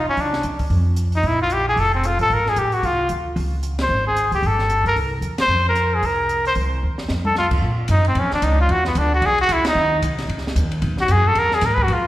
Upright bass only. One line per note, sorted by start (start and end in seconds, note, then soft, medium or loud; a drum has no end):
0.06 muted upright bass stroke soft
0.17 0.42 C2 medium
0.44 0.69 D#2 medium
0.70 1.21 F2 medium
1.24 1.74 A#1 medium
1.76 2.16 F1 medium
2.19 2.29 A1 medium
2.30 2.55 G#1 medium
2.56 2.81 A1 medium
2.83 3.08 C2 medium
3.10 3.35 D2 medium
3.36 3.87 C#2 medium
3.89 4.29 G#1 medium
4.31 4.42 D2 medium
4.42 4.82 G1 medium
4.84 4.95 G2 medium
4.96 5.21 C2 medium
5.21 5.47 E2 medium
5.48 6.00 F2 medium
6.02 6.53 C2 medium
6.56 6.81 C2 medium
6.83 7.08 D#2 medium
7.09 7.60 F2 medium
7.62 7.88 A#2 medium
7.89 8.15 F#2 medium
8.15 8.30 F2 medium
8.33 muted upright bass stroke soft
8.42 8.68 C#2 medium
8.69 8.95 E2 medium
8.95 9.21 D2 loud
9.22 9.48 B1 medium
9.49 9.64 C#2 medium
9.65 muted upright bass stroke soft
9.75 10.01 D#2 medium
10.02 10.28 C2 medium
10.28 10.55 C#2 medium
10.56 10.81 D#2 medium
10.82 11.08 B1 medium
11.09 11.35 F#2 loud
11.35 11.61 E2 medium
11.62 11.88 G#2 medium
11.88 12.07 F#2 medium